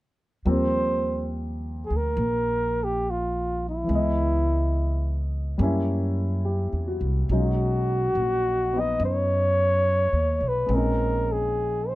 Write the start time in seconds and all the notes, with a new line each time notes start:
0.45 D#2 F3 G3 A#3 C4
0.51 C5
1.86 G#4
1.90 D2
1.96 A#4
2.17 A#1
2.84 G4
3.10 F4
3.69 E4
3.84 E3 G#3
3.89 C#2 B3
3.95 D#5
5.58 F#2 G3 A#3 C#4
5.63 E4
6.45 G4
6.73 E2
6.88 F#4
7.01 C2
7.29 B1 F#3 G#3 C#4 D#4
7.37 F#4
8.15 A#1
8.73 B3 D#4
8.80 D#5
9.00 F#2
9.05 C#5
10.13 D#2
10.41 B1
10.48 B4
10.66 A#1 G#3 C4
10.73 C#4 D#4 A#4
11.32 G#4
11.88 C5